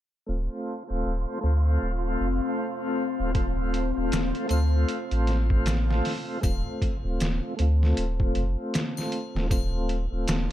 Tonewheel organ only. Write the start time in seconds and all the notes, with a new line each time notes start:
0.26 A3 C4 F4
0.87 A3 C4 F4
1.41 A3 C4
1.46 F4
3.34 A3 C4 F4
3.95 A3 C4 F4
4.48 A3 C4
4.53 F4
6.41 A3 C4 F4
7.02 A3 C4 F4
7.57 A3 C4
7.62 F4
9.49 A3 C4 F4
10.10 A3 C4 F4